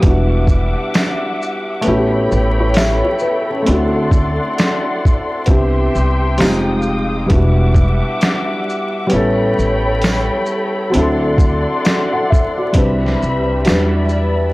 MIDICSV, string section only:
0, 0, Header, 1, 2, 480
1, 0, Start_track
1, 0, Key_signature, 1, "minor"
1, 0, Tempo, 909091
1, 17, Time_signature, 4, 2, 24, 8
1, 7674, End_track
2, 0, Start_track
2, 0, Title_t, "String section"
2, 0, Program_c, 0, 48
2, 16, Note_on_c, 0, 78, 72
2, 19, Note_on_c, 0, 55, 73
2, 19, Note_on_c, 0, 76, 69
2, 20, Note_on_c, 0, 86, 76
2, 967, Note_off_c, 0, 78, 0
2, 968, Note_off_c, 0, 55, 0
2, 968, Note_off_c, 0, 76, 0
2, 969, Note_off_c, 0, 86, 0
2, 978, Note_on_c, 0, 73, 70
2, 979, Note_on_c, 0, 69, 79
2, 980, Note_on_c, 0, 79, 71
2, 980, Note_on_c, 0, 83, 80
2, 1928, Note_off_c, 0, 73, 0
2, 1929, Note_off_c, 0, 79, 0
2, 1929, Note_off_c, 0, 83, 0
2, 1942, Note_on_c, 0, 78, 66
2, 1942, Note_on_c, 0, 84, 79
2, 1944, Note_on_c, 0, 74, 69
2, 2879, Note_off_c, 0, 69, 0
2, 2890, Note_off_c, 0, 78, 0
2, 2890, Note_off_c, 0, 84, 0
2, 2891, Note_off_c, 0, 74, 0
2, 2902, Note_on_c, 0, 76, 69
2, 2903, Note_on_c, 0, 79, 76
2, 2904, Note_on_c, 0, 67, 74
2, 2904, Note_on_c, 0, 84, 80
2, 3375, Note_off_c, 0, 76, 0
2, 3376, Note_off_c, 0, 67, 0
2, 3376, Note_off_c, 0, 84, 0
2, 3383, Note_on_c, 0, 77, 58
2, 3385, Note_on_c, 0, 56, 69
2, 3385, Note_on_c, 0, 87, 73
2, 3850, Note_off_c, 0, 79, 0
2, 3854, Note_on_c, 0, 78, 68
2, 3855, Note_off_c, 0, 77, 0
2, 3855, Note_on_c, 0, 86, 84
2, 3856, Note_off_c, 0, 56, 0
2, 3856, Note_off_c, 0, 87, 0
2, 3856, Note_on_c, 0, 55, 77
2, 3856, Note_on_c, 0, 76, 71
2, 4806, Note_off_c, 0, 78, 0
2, 4806, Note_off_c, 0, 86, 0
2, 4807, Note_off_c, 0, 55, 0
2, 4807, Note_off_c, 0, 76, 0
2, 4815, Note_on_c, 0, 69, 76
2, 4815, Note_on_c, 0, 79, 72
2, 4816, Note_on_c, 0, 83, 89
2, 4818, Note_on_c, 0, 73, 74
2, 5766, Note_off_c, 0, 79, 0
2, 5767, Note_off_c, 0, 83, 0
2, 5768, Note_off_c, 0, 73, 0
2, 5776, Note_on_c, 0, 78, 66
2, 5777, Note_on_c, 0, 74, 74
2, 5777, Note_on_c, 0, 84, 81
2, 6717, Note_off_c, 0, 69, 0
2, 6727, Note_off_c, 0, 74, 0
2, 6727, Note_off_c, 0, 78, 0
2, 6727, Note_off_c, 0, 84, 0
2, 6734, Note_on_c, 0, 55, 80
2, 6735, Note_on_c, 0, 60, 68
2, 6735, Note_on_c, 0, 83, 83
2, 6736, Note_on_c, 0, 76, 71
2, 7208, Note_off_c, 0, 83, 0
2, 7209, Note_off_c, 0, 76, 0
2, 7211, Note_off_c, 0, 60, 0
2, 7215, Note_on_c, 0, 83, 74
2, 7216, Note_on_c, 0, 74, 63
2, 7216, Note_on_c, 0, 76, 67
2, 7674, Note_off_c, 0, 55, 0
2, 7674, Note_off_c, 0, 74, 0
2, 7674, Note_off_c, 0, 76, 0
2, 7674, Note_off_c, 0, 83, 0
2, 7674, End_track
0, 0, End_of_file